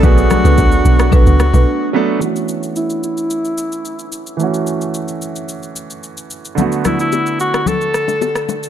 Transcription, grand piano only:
\new Staff \with { instrumentName = "Grand piano" } { \time 4/4 \key fis \minor \tempo 4 = 110 <fis a b d' gis'>4. r2 <fis a b d' a'>8 | <e a cis' fis'>1 | <e a cis' fis'>1 | <d a b fis'>1 | }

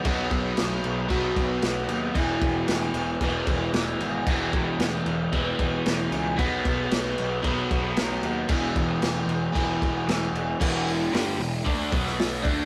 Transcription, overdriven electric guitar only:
\new Staff \with { instrumentName = "Overdriven electric guitar" } { \clef bass \time 4/4 \key b \mixolydian \tempo 4 = 114 <b, fis b>2 <b, fis b>2 | <e, b, e>2 <e, b, e>2 | <e, b, e>2 <e, b, e>2 | <b, fis b>2 <b, fis b>2 |
<e, b, e>2 <e, b, e>2 | \key b \dorian <e, b, e>4 <g, d g>8 <e, b,>8 <d a d'>8 <b, fis b>4 <d a d'>8 | }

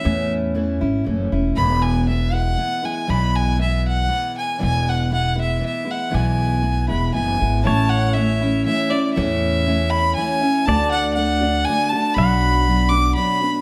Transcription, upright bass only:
\new Staff \with { instrumentName = "Upright bass" } { \clef bass \time 3/4 \key a \major \tempo 4 = 119 e,4. gis,,8 fis,,8 e,,8 | e,,2 r4 | b,,2 r4 | e,,2 r4 |
b,,4. e,,8 fis,,8 gis,,8 | a,,2 r4 | e,2 r4 | d,2 r4 |
b,,2 r4 | }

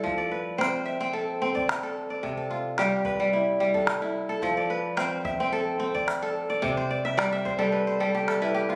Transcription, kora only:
<<
  \new Staff \with { instrumentName = "Kora" } { \time 4/4 \key f \lydian \tempo 4 = 109 << { r1 | r1 | r1 | d''16 c''16 d''16 e''16 d''16 e''16 c''16 a'16 b'16 c''16 a'16 g'16 a'16 b'16 g'16 f'16 | } \\ { a'16 d''16 b'8 c''8 e''8 a'8. d''8. r16 d''16~ | d''16 a'16 f'8 g'8 b'8 e'8. a'8. r16 a'16~ | a'16 d''16 b'8 c''8 e''8 a'8. d''8. r16 d''16~ | d''16 r2. r8. | } >> }
  \new Staff \with { instrumentName = "Kora" } { \time 4/4 \key f \lydian f8 r8 c'8 r16 c'8 r16 c'8 r16 a'8 r16 | c8 r8 g8 r16 g8 r16 g8 r16 e'8 r16 | f8 r8 c'8 r16 c'8 r16 c'8 r16 a'8 r16 | c8 r8 g8 r16 g8 r16 g8 r16 e'8 r16 | }
>>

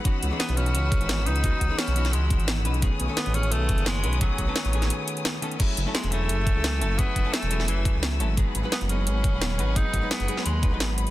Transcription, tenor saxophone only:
\new Staff \with { instrumentName = "Tenor saxophone" } { \time 4/4 \key fis \dorian \tempo 4 = 173 r4 b8 cis'2 dis'8~ | dis'4 cis'4 gis4 r4 | r4 b8 cis'8 a4 gis4 | fis2. r4 |
r4 gis8 a2~ a8 | b4 a4 e4 r4 | r4 b8 cis'2~ cis'8 | dis'4 b4 gis4 r4 | }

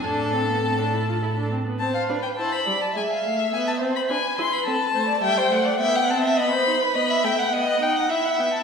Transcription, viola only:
\new Staff \with { instrumentName = "Viola" } { \time 3/4 \key a \minor \tempo 4 = 104 d'8 c'16 b16 c'16 d'16 e'16 f'16 e'16 d'16 c'16 b16 | c'8 d'8 e'8 g8 gis8 a8 | b8 c'8 d'8 e'8 c'8 a8 | g8 a8 b8 c'8 b8 dis'8 |
b8 a8 b8 dis'8 e'8 b8 | }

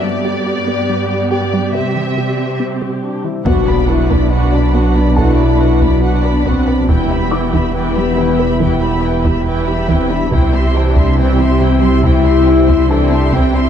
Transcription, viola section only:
\new Staff \with { instrumentName = "Viola section" } { \time 4/4 \key b \phrygian \tempo 4 = 70 << { g'2.~ g'8. r16 | fis'16 d'16 fis'16 d'16 fis'16 d'16 fis'16 d'16 fis'16 d'16 fis'16 d'16 fis'16 d'16 fis'16 d'16 | e'16 g'16 e'16 g'16 e'16 g'16 e'16 g'16 e'16 g'16 e'16 g'16 e'16 g'16 e'16 g'16 | e'16 g'16 e'16 g'16 e'16 g'16 e'16 g'16 e'16 g'16 e'16 g'16 e'16 g'16 e'16 g'16 | } \\ { b2 c'4.~ c'16 r16 | d'16 b16 d'16 b16 d'16 b16 d'16 b16 d'16 b16 d'16 b16 d'16 b16 d'16 b16 | e16 g16 e16 g16 e16 g16 e16 g16 e16 g16 e16 g16 e16 g16 e16 g16 | e16 g16 e16 g16 e16 g16 e16 g16 e16 g16 e16 g16 e16 g16 e16 g16 | } >> }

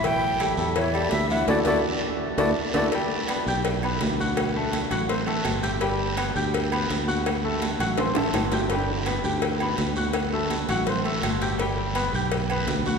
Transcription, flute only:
\new Staff \with { instrumentName = "Flute" } { \time 4/4 \key g \major \tempo 4 = 166 g''4. r8 cis''8 d''8 e''8 fis''8 | d''8 d''8 r4. d''8 r8 d''8 | r1 | r1 |
r1 | r1 | r1 | r1 |
r1 | }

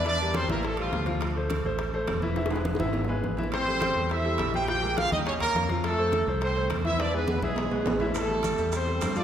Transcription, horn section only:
\new Staff \with { instrumentName = "Horn section" } { \time 4/4 \key e \phrygian \tempo 4 = 208 <d' d''>4 <c' c''>8 <bes bes'>8 <a a'>8 <f f'>4 r8 | r1 | r1 | <c' c''>2 <e' e''>4. <g' g''>8 |
<g' g''>4 <f' f''>8 <ees' ees''>8 <des' des''>8 <bes bes'>4 r8 | <a a'>4. r8 <c' c''>4 r8 <e' e''>8 | <d' d''>8 <b b'>4 <gis gis'>2 r8 | <a a'>2 <c' c''>4. <d' d''>8 | }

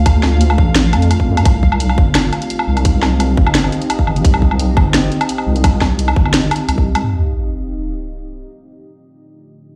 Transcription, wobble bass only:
\new Staff \with { instrumentName = "Wobble bass" } { \clef bass \time 4/4 \key d \phrygian \tempo 4 = 172 d,4. a,,4 f,4 f,8 | c,4. g,,4 r4 c,8~ | c,4. g,,4 r4 g,,8 | c,4. g,,4 r4 c,8~ |
c,4. g,,4 r8 c,4 | r1 | r1 | }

